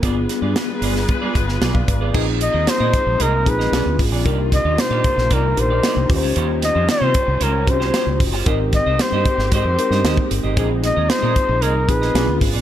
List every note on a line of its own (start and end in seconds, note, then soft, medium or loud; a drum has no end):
0.02 0.25 G1 loud
0.02 2.12 G3 medium
0.02 0.84 B3 medium
0.02 0.22 B3 medium
0.02 0.84 D4 medium
0.02 0.84 F4 medium
0.02 2.12 F4 medium
0.02 0.17 F4 medium
0.02 2.12 G#4 medium
0.02 0.84 G#4 medium
0.02 0.16 G#4 medium
0.02 2.12 B4 medium
0.02 0.15 D5 medium
0.02 kick loud
0.02 closed hi-hat medium
0.17 muted clean electric guitar stroke soft
0.29 muted clean electric guitar stroke soft
0.29 snare soft
0.29 closed hi-hat medium
0.42 0.53 G2 loud
0.42 0.58 B3 medium
0.42 0.58 F4 medium
0.42 0.58 G#4 medium
0.42 0.58 D5 medium
0.56 snare loud
0.56 closed hi-hat medium
0.69 muted clean electric guitar stroke soft
0.81 1.04 G1 medium
0.81 1.01 B3 medium
0.81 0.95 F4 medium
0.81 0.94 G#4 medium
0.81 0.94 D5 medium
0.81 open hi-hat medium
0.95 muted clean electric guitar stroke medium
0.95 snare soft
1.08 muted clean electric guitar stroke soft
1.08 kick medium
1.08 closed hi-hat medium
1.22 1.34 B3 medium
1.22 1.34 F4 medium
1.22 1.35 G#4 medium
1.22 1.35 D5 medium
1.35 1.57 G1 medium
1.35 kick medium
1.35 closed hi-hat medium
1.48 muted clean electric guitar stroke soft
1.48 snare soft
1.61 1.83 B1 medium
1.61 1.80 B3 medium
1.61 1.75 F4 medium
1.61 1.74 G#4 medium
1.61 1.74 D5 medium
1.61 snare loud
1.61 closed hi-hat medium
1.74 1.87 D5 medium
1.74 1.87 F5 medium
1.74 muted clean electric guitar stroke soft
1.74 kick medium
1.88 2.10 G#1 medium
1.88 2.00 B4 medium
1.88 2.00 D5 medium
1.88 muted clean electric guitar stroke soft
1.88 kick medium
1.88 closed hi-hat medium
2.01 2.13 B3 medium
2.01 2.14 F4 medium
2.01 2.14 G#4 soft
2.01 2.13 G#4 medium
2.01 2.26 B4 medium
2.01 2.15 D5 medium
2.13 2.47 A#1 loud
2.13 4.23 G#3 medium
2.13 3.71 A#3 medium
2.13 2.95 C4 medium
2.13 2.33 D#4 medium
2.13 3.71 D#4 medium
2.13 2.95 D#4 medium
2.13 2.96 F4 medium
2.13 2.27 G#4 medium
2.13 2.96 G#4 medium
2.13 2.27 A#4 medium
2.13 2.26 D#5 medium
2.13 kick loud
2.13 crash medium
2.27 muted clean electric guitar stroke medium
2.41 2.70 D#5 loud
2.41 muted clean electric guitar stroke soft
2.41 closed hi-hat medium
2.54 2.65 D#2 medium
2.54 2.66 D#4 soft
2.54 2.66 G#4 medium
2.54 2.67 A#4 medium
2.54 2.67 D#5 medium
2.67 3.23 C5 loud
2.67 muted clean electric guitar stroke soft
2.67 muted fretless electric bass stroke soft
2.67 snare loud
2.67 closed hi-hat medium
2.80 2.91 A#2 medium
2.80 2.92 D#4 medium
2.80 2.92 G#4 medium
2.80 2.93 A#4 medium
2.80 2.93 D#5 medium
2.93 muted clean electric guitar stroke soft
2.93 kick medium
2.93 closed hi-hat medium
3.06 3.18 A#1 medium
3.06 muted clean electric guitar stroke soft
3.19 3.46 C2 medium
3.19 3.39 D#4 medium
3.19 3.33 G#4 medium
3.19 3.33 A#4 medium
3.19 3.51 A#4 medium
3.19 3.32 D#5 medium
3.19 closed hi-hat medium
3.33 muted clean electric guitar stroke medium
3.45 3.68 A#1 medium
3.45 3.72 C4 medium
3.45 3.72 D#4 medium
3.45 3.72 F4 medium
3.45 3.72 G#4 medium
3.45 4.01 B4 medium
3.45 muted clean electric guitar stroke soft
3.45 kick medium
3.45 closed hi-hat medium
3.59 3.72 D#4 soft
3.59 3.72 G#4 soft
3.59 3.73 A#4 medium
3.59 3.73 D#5 medium
3.59 snare soft
3.72 3.83 B1 medium
3.72 3.92 B3 medium
3.72 4.25 B3 medium
3.72 4.15 C#4 medium
3.72 4.15 D4 medium
3.72 6.07 F4 medium
3.72 4.15 F4 medium
3.72 3.86 F4 medium
3.72 3.85 G#4 medium
3.72 4.15 G#4 medium
3.72 3.85 D5 medium
3.72 snare loud
3.72 closed hi-hat medium
3.86 3.97 D2 medium
3.86 muted clean electric guitar stroke soft
3.99 4.12 G#1 medium
3.99 muted clean electric guitar stroke soft
3.99 kick medium
3.99 open hi-hat medium
4.12 4.23 A#1 medium
4.12 4.25 B3 medium
4.12 4.26 F4 medium
4.12 4.26 G#4 medium
4.12 4.26 D5 medium
4.24 4.58 C2 loud
4.24 6.08 C3 medium
4.24 8.43 D#3 medium
4.24 6.08 A#3 medium
4.24 4.45 A#3 medium
4.24 5.06 D4 medium
4.24 5.06 D#4 medium
4.24 4.38 D#4 medium
4.24 5.06 G4 medium
4.24 4.38 G4 medium
4.24 5.07 A#4 medium
4.24 4.37 D5 medium
4.24 kick loud
4.24 closed hi-hat medium
4.38 muted clean electric guitar stroke medium
4.52 4.82 D#5 loud
4.52 muted clean electric guitar stroke soft
4.52 kick medium
4.52 snare soft
4.52 closed hi-hat medium
4.65 4.76 D#2 medium
4.65 4.77 A#3 medium
4.65 4.77 D#4 soft
4.65 4.77 G4 medium
4.65 4.78 D5 medium
4.78 5.35 C5 loud
4.78 muted clean electric guitar stroke soft
4.78 snare loud
4.78 closed hi-hat medium
4.90 5.02 A#2 medium
4.90 5.03 A#3 medium
4.90 5.03 D#4 medium
4.90 5.04 G4 medium
4.90 5.04 D5 medium
5.04 muted clean electric guitar stroke soft
5.04 kick medium
5.04 closed hi-hat medium
5.17 5.28 A#1 medium
5.17 muted clean electric guitar stroke medium
5.17 snare soft
5.30 5.53 C2 loud
5.30 5.50 A#3 medium
5.30 5.44 D#4 medium
5.30 5.43 G4 medium
5.30 5.61 A#4 medium
5.30 5.43 D5 medium
5.30 kick medium
5.30 closed hi-hat medium
5.44 muted clean electric guitar stroke soft
5.56 5.79 A#1 medium
5.56 6.09 D4 medium
5.56 6.09 D#4 medium
5.56 6.08 G4 medium
5.56 6.10 A#4 medium
5.56 6.11 C5 medium
5.56 muted clean electric guitar stroke soft
5.56 closed hi-hat medium
5.70 5.82 A#3 soft
5.70 5.82 D#4 medium
5.70 5.83 G4 medium
5.70 5.83 D5 medium
5.83 6.02 A#3 medium
5.83 5.97 D#4 medium
5.83 5.96 G4 medium
5.83 5.96 D5 medium
5.83 snare loud
5.83 closed hi-hat medium
5.96 6.07 C2 medium
5.96 muted clean electric guitar stroke soft
6.09 6.23 D#2 medium
6.09 8.44 G3 medium
6.09 6.94 C#4 medium
6.09 8.45 C#4 medium
6.09 6.94 F4 medium
6.09 6.94 G4 medium
6.09 6.17 B4 medium
6.09 muted clean electric guitar stroke soft
6.09 kick loud
6.09 open hi-hat medium
6.17 6.98 C5 medium
6.22 6.34 C#2 medium
6.22 6.34 C#4 medium
6.22 6.35 F4 medium
6.22 6.35 G4 medium
6.22 6.36 C5 medium
6.35 6.69 D#2 loud
6.35 6.55 C#4 medium
6.35 6.49 F4 medium
6.35 6.48 G4 loud
6.35 6.47 C5 medium
6.35 closed hi-hat medium
6.49 muted clean electric guitar stroke soft
6.62 6.88 D#5 loud
6.62 muted clean electric guitar stroke soft
6.62 snare soft
6.62 closed hi-hat medium
6.75 6.86 F2 loud
6.75 6.87 C#4 soft
6.75 6.87 F4 medium
6.75 6.88 G4 medium
6.75 6.88 C5 medium
6.88 7.44 C5 loud
6.88 muted clean electric guitar stroke soft
6.88 snare loud
6.88 closed hi-hat medium
7.01 7.13 C3 medium
7.01 7.13 C#4 medium
7.01 7.13 F4 medium
7.01 7.13 G4 medium
7.01 7.14 C5 medium
7.14 muted clean electric guitar stroke soft
7.14 kick medium
7.14 closed hi-hat medium
7.27 7.39 C2 medium
7.27 muted clean electric guitar stroke soft
7.40 7.67 C#2 medium
7.40 7.60 C#4 medium
7.40 7.53 F4 medium
7.40 7.52 G4 medium
7.40 7.71 A#4 medium
7.40 7.52 C5 medium
7.40 closed hi-hat medium
7.53 muted clean electric guitar stroke soft
7.67 7.89 C2 loud
7.67 8.28 C#4 medium
7.67 8.28 F4 medium
7.67 7.74 F#4 medium
7.67 8.28 C5 medium
7.67 8.22 C5 medium
7.67 muted clean electric guitar stroke soft
7.67 kick loud
7.67 closed hi-hat medium
7.73 8.31 G4 medium
7.80 7.91 C#4 medium
7.80 7.92 F4 medium
7.80 7.93 G4 medium
7.80 7.93 C5 medium
7.80 snare soft
7.93 8.13 C#4 medium
7.93 8.06 F4 medium
7.93 8.06 G4 medium
7.93 8.05 C5 medium
7.93 snare loud
7.93 closed hi-hat medium
8.06 8.18 C#2 medium
8.06 muted clean electric guitar stroke medium
8.20 8.33 F1 medium
8.20 muted clean electric guitar stroke soft
8.20 kick loud
8.20 open hi-hat medium
8.33 8.44 G1 medium
8.33 8.45 C#4 medium
8.33 8.46 F4 medium
8.33 8.45 G4 medium
8.33 8.45 C5 medium
8.45 8.79 G#1 loud
8.45 12.61 G#3 medium
8.45 9.27 C4 medium
8.45 10.55 C4 medium
8.45 8.65 D#4 medium
8.45 9.27 D#4 medium
8.45 9.28 G4 medium
8.45 10.55 G4 medium
8.45 8.59 G4 medium
8.45 9.28 A#4 medium
8.45 8.59 C5 medium
8.45 8.59 D#5 medium
8.45 kick loud
8.45 closed hi-hat medium
8.60 muted clean electric guitar stroke soft
8.73 9.03 D#5 loud
8.73 muted clean electric guitar stroke soft
8.73 kick medium
8.73 snare soft
8.73 closed hi-hat medium
8.86 8.97 C2 medium
8.86 8.99 D#4 medium
8.86 8.99 G4 medium
8.86 8.99 C5 medium
8.86 9.00 D#5 medium
8.99 9.53 C5 loud
8.99 muted clean electric guitar stroke soft
8.99 snare loud
8.99 closed hi-hat medium
9.12 9.23 G2 medium
9.12 9.25 D#4 medium
9.12 9.26 G4 medium
9.12 9.26 C5 medium
9.12 9.26 D#5 medium
9.25 muted clean electric guitar stroke soft
9.25 kick medium
9.25 closed hi-hat medium
9.38 9.49 G#1 medium
9.38 muted clean electric guitar stroke soft
9.38 snare soft
9.52 9.63 G#2 loud
9.52 9.71 D#4 medium
9.52 9.65 G4 medium
9.52 9.65 C5 medium
9.52 10.28 C5 medium
9.52 9.64 D#5 medium
9.52 kick medium
9.52 closed hi-hat medium
9.65 9.76 F2 medium
9.65 muted clean electric guitar stroke soft
9.78 10.39 C4 medium
9.78 10.39 D#4 medium
9.78 10.39 G4 medium
9.78 10.39 A#4 medium
9.78 muted clean electric guitar stroke soft
9.78 closed hi-hat medium
9.90 10.02 G2 medium
9.90 10.03 D#4 medium
9.90 10.04 G4 soft
9.90 10.04 C5 medium
9.90 10.05 D#5 medium
9.90 snare soft
10.04 10.15 D#2 medium
10.04 10.24 D#4 medium
10.04 10.18 G4 medium
10.04 10.17 C5 medium
10.04 10.17 D#5 medium
10.04 snare loud
10.04 closed hi-hat medium
10.17 muted clean electric guitar stroke soft
10.17 kick medium
10.30 10.42 G1 medium
10.30 muted clean electric guitar stroke soft
10.30 closed hi-hat medium
10.44 10.55 G#1 medium
10.44 10.55 D#4 soft
10.44 10.57 G4 medium
10.44 10.57 C5 medium
10.44 10.57 D#5 medium
10.57 10.90 A#1 loud
10.57 12.13 A#3 medium
10.57 11.38 C4 medium
10.57 10.63 D4 medium
10.57 10.76 D#4 medium
10.57 12.13 D#4 medium
10.57 11.38 F4 medium
10.57 10.70 G#4 medium
10.57 11.38 G#4 medium
10.57 10.69 A#4 medium
10.57 10.69 D#5 medium
10.57 kick loud
10.57 closed hi-hat medium
10.64 11.41 D#4 medium
10.70 muted clean electric guitar stroke soft
10.83 11.11 D#5 loud
10.83 muted clean electric guitar stroke soft
10.83 snare soft
10.83 closed hi-hat medium
10.96 11.08 D#2 medium
10.96 11.08 D#4 medium
10.96 11.08 G#4 medium
10.96 11.09 A#4 medium
10.96 11.09 D#5 medium
11.09 11.63 C5 loud
11.09 muted clean electric guitar stroke soft
11.09 snare loud
11.09 closed hi-hat medium
11.22 11.34 A#2 medium
11.22 11.35 D#4 medium
11.22 11.35 G#4 medium
11.22 11.36 A#4 medium
11.22 11.36 D#5 medium
11.36 kick medium
11.36 closed hi-hat medium
11.49 11.62 A#1 medium
11.49 muted clean electric guitar stroke soft
11.61 11.89 C2 loud
11.61 11.81 D#4 medium
11.61 11.74 G#4 medium
11.61 11.90 A#4 medium
11.61 11.74 A#4 loud
11.61 11.73 D#5 medium
11.61 closed hi-hat medium
11.74 muted clean electric guitar stroke medium
11.88 12.11 A#1 medium
11.88 12.15 C4 medium
11.88 12.15 D#4 medium
11.88 12.14 F4 medium
11.88 12.15 G#4 medium
11.88 12.41 B4 medium
11.88 muted clean electric guitar stroke soft
11.88 kick medium
11.88 closed hi-hat medium
12.02 12.14 D#4 soft
12.02 12.14 G#4 medium
12.02 12.15 A#4 medium
12.02 12.15 D#5 medium
12.02 snare soft
12.14 12.26 B1 loud
12.14 12.33 B3 medium
12.14 12.61 B3 medium
12.14 12.57 C#4 medium
12.14 12.57 D4 medium
12.14 12.27 F4 medium
12.14 12.61 F4 medium
12.14 12.57 F4 medium
12.14 12.27 G#4 medium
12.14 12.57 G#4 medium
12.14 12.26 D5 medium
12.14 snare loud
12.14 closed hi-hat medium
12.27 12.39 D2 medium
12.27 muted clean electric guitar stroke soft
12.41 12.52 G#1 medium
12.41 muted clean electric guitar stroke soft
12.41 kick medium
12.41 open hi-hat medium
12.53 12.61 A#1 medium
12.53 12.61 B3 medium
12.53 12.61 F4 medium
12.53 12.61 G#4 medium
12.53 12.61 D5 medium